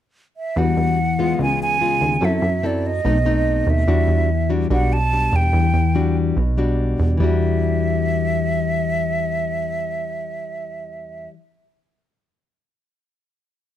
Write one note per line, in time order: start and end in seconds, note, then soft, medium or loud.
0.37 0.59 E5 medium
0.56 0.75 E2 loud
0.56 1.37 E3 medium
0.56 0.98 G3 soft
0.56 0.98 D4 soft
0.56 0.98 F#4 medium
0.56 1.40 F#5 medium
0.77 1.35 E2 medium
1.19 1.77 G#3 medium
1.19 1.77 B3 medium
1.19 1.78 F4 medium
1.39 1.97 C#2 loud
1.39 2.20 C#3 medium
1.39 1.60 G#5 medium
1.62 2.26 G#5 medium
1.81 2.20 G#3 soft
1.81 2.20 B3 medium
1.81 2.20 F4 medium
2.01 2.20 D#2 medium
2.21 2.41 F#2 loud
2.21 3.02 F#3 medium
2.21 2.48 C4 soft
2.21 2.48 E4 medium
2.21 2.48 A4 medium
2.21 2.68 E5 medium
2.42 3.00 F#2 medium
2.63 2.91 C4 medium
2.63 2.91 E4 soft
2.63 2.91 A4 medium
2.63 2.88 D5 medium
2.87 3.71 D#5 medium
3.04 3.63 B1 medium
3.04 3.85 B2 medium
3.04 3.17 A3 medium
3.04 3.17 C4 medium
3.04 3.17 D#4 medium
3.25 3.84 A3 medium
3.25 3.84 C4 medium
3.25 3.85 D#4 medium
3.67 3.86 D#2 medium
3.67 4.51 E5 medium
3.87 4.07 E2 loud
3.87 4.68 E3 medium
3.87 4.29 G3 soft
3.87 4.29 D4 medium
3.87 4.29 F#4 medium
4.08 4.66 E2 medium
4.50 4.67 G3 medium
4.50 4.67 D4 medium
4.50 4.67 F#4 medium
4.70 5.29 B1 medium
4.70 5.51 B2 medium
4.70 4.97 G3 soft
4.70 4.97 D4 medium
4.70 4.98 F#4 medium
4.70 4.94 F#5 medium
4.93 5.37 A5 loud
5.13 5.68 G3 soft
5.13 5.68 D4 soft
5.33 5.52 E2 medium
5.33 6.17 G5 medium
5.53 5.73 E2 loud
5.53 6.35 E3 medium
5.74 6.32 E2 medium
5.95 6.36 G3 medium
5.95 6.37 D4 medium
5.95 6.37 F#4 medium
6.37 6.95 B1 medium
6.37 7.18 B2 medium
6.57 7.16 G3 medium
6.57 7.17 D4 medium
6.57 7.17 F#4 medium
7.00 7.19 E2 medium
7.17 11.28 E2 medium
7.17 11.31 E3 medium
7.17 11.33 G3 medium
7.22 11.35 D4 medium
7.22 11.37 F#4 medium
7.22 11.29 E5 medium